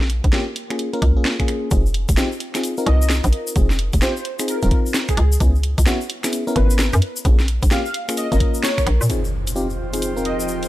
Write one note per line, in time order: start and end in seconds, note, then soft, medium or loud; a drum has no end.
0.00 0.21 A#1 loud
0.00 snare medium
0.10 open hi-hat loud
0.24 0.32 A#1 medium
0.24 kick loud
0.24 closed hi-hat medium
0.33 0.44 A#3 medium
0.33 0.44 C#4 medium
0.33 0.44 F4 medium
0.33 0.44 G4 loud
0.33 snare loud
0.56 open hi-hat loud
0.70 0.90 A#3 medium
0.70 0.90 C#4 medium
0.70 0.90 F4 medium
0.70 0.90 G#4 medium
0.70 finger snap medium
0.70 closed hi-hat medium
0.79 closed hi-hat medium
0.93 1.14 A#3 medium
0.93 1.14 C#4 medium
0.93 1.14 F4 medium
0.93 1.14 A#4 loud
0.93 open hi-hat medium
1.02 1.18 C#2 loud
1.02 kick loud
1.02 open hi-hat loud
1.16 1.24 A#1 medium
1.16 1.36 A#3 medium
1.16 1.36 C#4 medium
1.16 1.36 F4 medium
1.16 1.36 G#4 medium
1.25 snare loud
1.40 1.69 A#3 medium
1.40 1.69 C#4 medium
1.40 1.69 F4 medium
1.40 1.69 G#4 loud
1.40 finger snap medium
1.40 kick medium
1.40 closed hi-hat soft
1.48 finger snap medium
1.48 open hi-hat loud
1.71 2.06 F1 loud
1.71 1.82 C4 medium
1.71 1.82 D#4 medium
1.71 1.82 F4 medium
1.71 1.82 G#4 medium
1.71 kick loud
1.71 closed hi-hat medium
1.71 shaker medium
1.86 shaker soft
1.94 open hi-hat loud
2.09 2.16 F1 medium
2.09 kick loud
2.09 closed hi-hat medium
2.09 shaker medium
2.17 2.29 C4 medium
2.17 2.28 D#4 medium
2.17 2.29 F4 medium
2.17 2.29 G4 loud
2.17 snare loud
2.17 shaker medium
2.32 shaker soft
2.40 open hi-hat loud
2.55 2.75 C4 medium
2.55 2.75 D#4 medium
2.55 2.75 F4 medium
2.55 2.75 G#4 medium
2.55 finger snap medium
2.55 snare medium
2.55 closed hi-hat medium
2.55 shaker medium
2.63 closed hi-hat medium
2.63 shaker medium
2.77 3.54 C4 medium
2.77 3.54 D#4 medium
2.77 3.54 F4 medium
2.77 3.54 A#4 medium
2.77 shaker soft
2.86 3.21 C2 loud
2.86 2.96 D#5 loud
2.86 open hi-hat loud
3.01 3.07 D#5 medium
3.01 shaker medium
3.10 snare loud
3.10 shaker medium
3.24 3.31 A#1 loud
3.24 closed hi-hat medium
3.24 shaker soft
3.33 open hi-hat loud
3.47 shaker medium
3.56 3.90 F1 loud
3.56 3.67 C4 medium
3.56 3.67 D#4 medium
3.56 3.67 F4 medium
3.56 3.67 G#4 medium
3.56 kick loud
3.56 closed hi-hat medium
3.56 shaker medium
3.70 snare medium
3.70 shaker soft
3.79 open hi-hat loud
3.93 4.01 F1 medium
3.93 kick loud
3.93 closed hi-hat medium
3.93 shaker medium
4.02 4.13 C4 loud
4.02 4.13 D#4 medium
4.02 4.13 F4 medium
4.02 4.13 G4 loud
4.02 4.11 C5 medium
4.02 snare loud
4.02 shaker medium
4.16 4.22 C5 medium
4.16 shaker soft
4.25 open hi-hat loud
4.39 4.59 C4 medium
4.39 4.59 D#4 medium
4.39 4.59 F4 medium
4.39 4.59 G#4 medium
4.39 finger snap medium
4.39 closed hi-hat medium
4.39 shaker medium
4.48 4.57 A#4 medium
4.48 closed hi-hat medium
4.48 shaker medium
4.62 4.70 D#1 medium
4.62 5.16 C4 medium
4.62 5.16 D#4 medium
4.62 5.16 F4 medium
4.62 5.16 A#4 medium
4.62 4.68 A#4 medium
4.62 open hi-hat medium
4.62 shaker soft
4.71 kick loud
4.71 open hi-hat loud
4.86 shaker medium
4.94 snare loud
4.94 shaker medium
5.08 5.23 G#4 medium
5.08 finger snap medium
5.08 kick medium
5.08 closed hi-hat medium
5.08 shaker soft
5.17 5.38 C#2 loud
5.17 open hi-hat loud
5.32 shaker medium
5.40 5.75 C#2 loud
5.40 5.52 B3 medium
5.40 5.52 C#4 medium
5.40 5.52 E4 medium
5.40 5.52 G#4 medium
5.40 kick loud
5.40 closed hi-hat medium
5.40 shaker medium
5.55 shaker soft
5.63 open hi-hat loud
5.78 5.85 C#2 medium
5.78 kick loud
5.78 closed hi-hat medium
5.78 shaker medium
5.86 5.98 B3 medium
5.86 5.98 C#4 medium
5.86 5.98 E4 medium
5.86 5.98 F#4 loud
5.86 snare loud
5.86 shaker medium
6.01 shaker soft
6.10 open hi-hat loud
6.24 6.44 B3 medium
6.24 6.44 C#4 medium
6.24 6.44 E4 medium
6.24 6.44 G#4 medium
6.24 finger snap medium
6.24 snare medium
6.24 closed hi-hat medium
6.24 shaker medium
6.33 closed hi-hat medium
6.33 shaker medium
6.47 7.01 B3 medium
6.47 7.01 C#4 medium
6.47 7.01 E4 medium
6.47 7.01 A#4 loud
6.47 shaker soft
6.56 6.90 G#1 loud
6.56 6.65 B4 loud
6.56 open hi-hat loud
6.70 6.76 B4 medium
6.70 shaker medium
6.79 snare loud
6.79 shaker medium
6.93 7.01 F#2 loud
6.93 closed hi-hat medium
6.93 shaker soft
7.02 open hi-hat loud
7.16 shaker medium
7.25 7.59 A#1 loud
7.25 7.36 A#3 medium
7.25 7.36 C#4 medium
7.25 7.36 F4 medium
7.25 7.36 G#4 medium
7.25 kick loud
7.25 closed hi-hat medium
7.25 shaker medium
7.39 snare medium
7.39 shaker soft
7.48 open hi-hat loud
7.63 7.70 A#1 medium
7.63 kick loud
7.63 closed hi-hat medium
7.63 shaker medium
7.71 7.82 A#3 medium
7.71 7.82 C#4 medium
7.71 7.82 F4 medium
7.71 7.82 G4 loud
7.71 7.80 F5 medium
7.71 snare loud
7.71 shaker medium
7.86 7.91 F5 medium
7.86 shaker soft
7.94 open hi-hat loud
8.09 8.28 A#3 medium
8.09 8.28 C#4 medium
8.09 8.28 F4 medium
8.09 8.28 G#4 medium
8.09 finger snap medium
8.09 closed hi-hat medium
8.09 shaker medium
8.17 8.27 D#5 medium
8.17 closed hi-hat medium
8.17 shaker medium
8.32 8.39 G#1 medium
8.32 9.08 A#3 medium
8.32 9.08 C#4 medium
8.32 9.08 F4 medium
8.32 9.08 A#4 loud
8.32 8.37 D#5 medium
8.32 open hi-hat medium
8.32 shaker soft
8.40 kick medium
8.40 open hi-hat loud
8.54 shaker medium
8.63 8.73 C#5 medium
8.63 snare loud
8.63 shaker medium
8.78 8.83 C#5 medium
8.78 finger snap medium
8.78 kick medium
8.78 closed hi-hat medium
8.78 shaker soft
8.87 8.99 A#1 loud
8.87 finger snap medium
8.87 open hi-hat loud
9.01 9.08 A#2 medium
9.01 shaker medium
9.09 10.68 F3 medium
9.09 9.21 C4 medium
9.09 9.21 D#4 medium
9.09 9.21 F4 medium
9.09 10.68 F4 medium
9.09 10.68 G4 medium
9.09 9.21 G#4 medium
9.09 10.68 G#4 medium
9.09 10.68 C5 medium
9.09 10.68 D#5 medium
9.09 closed hi-hat medium
9.09 impact medium
9.09 shaker medium
9.21 10.68 C5 medium
9.21 shaker soft
9.47 closed hi-hat medium
9.47 shaker medium
9.52 9.67 C4 medium
9.52 9.67 D#4 medium
9.52 9.67 F4 medium
9.52 9.67 G4 loud
9.52 10.68 G5 medium
9.56 shaker medium
9.70 shaker soft
9.93 10.13 C4 medium
9.93 10.13 D#4 medium
9.93 10.13 F4 medium
9.93 10.13 G#4 medium
9.93 closed hi-hat medium
9.93 shaker medium
10.02 closed hi-hat medium
10.02 shaker medium
10.16 10.68 C4 medium
10.16 10.68 D#4 medium
10.16 10.68 F4 medium
10.16 10.68 A#4 medium
10.16 shaker soft
10.25 10.34 D#5 medium
10.25 closed hi-hat medium
10.40 10.45 D#5 medium
10.40 shaker medium
10.48 shaker medium
10.63 closed hi-hat medium
10.63 shaker soft